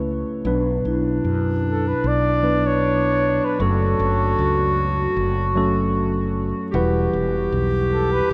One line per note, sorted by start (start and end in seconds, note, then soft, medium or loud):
0.00 0.23 C#2 medium
0.00 0.42 C#2 medium
0.00 0.42 C#3 medium
0.00 0.26 A3 medium
0.00 0.27 C#4 medium
0.00 0.27 E4 medium
0.00 0.27 B4 medium
0.45 0.79 B1 medium
0.45 3.57 B1 medium
0.45 3.57 B2 medium
0.45 1.65 F#3 medium
0.45 1.65 B3 medium
0.45 3.61 D4 medium
0.45 1.65 D4 medium
0.45 1.66 B4 medium
0.85 1.19 B1 medium
0.85 3.38 E4 soft
1.24 1.92 F#2 medium
1.70 1.90 A4 medium
1.88 2.09 B4 medium
2.04 3.39 B1 medium
2.04 2.68 D5 loud
2.43 3.32 F#3 medium
2.43 3.32 B3 medium
2.43 3.32 D4 medium
2.43 3.33 B4 medium
2.67 3.46 C#5 medium
3.45 3.63 B4 medium
3.59 3.94 F#1 medium
3.59 6.71 F#1 medium
3.59 6.70 F#2 medium
3.59 4.79 F#3 medium
3.59 4.79 A3 medium
3.59 4.80 C#4 medium
3.59 6.47 F#4 medium
3.59 4.80 A4 medium
3.64 5.15 A4 medium
3.99 4.33 F#1 medium
4.39 5.06 C#2 medium
4.39 6.91 F#4 medium
5.17 6.52 F#1 medium
5.55 6.45 F#3 medium
5.55 6.45 A3 medium
5.55 6.46 C#4 medium
5.55 6.46 A4 medium
6.72 7.08 E1 medium
6.72 8.33 E2 medium
6.72 8.33 E3 medium
6.72 7.93 G3 medium
6.72 7.93 E4 medium
6.72 8.33 G4 medium
6.72 7.94 B4 medium
6.72 7.93 F#5 medium
7.13 7.47 E1 medium
7.52 8.20 B1 medium
7.93 8.14 A4 medium
8.12 8.31 B4 medium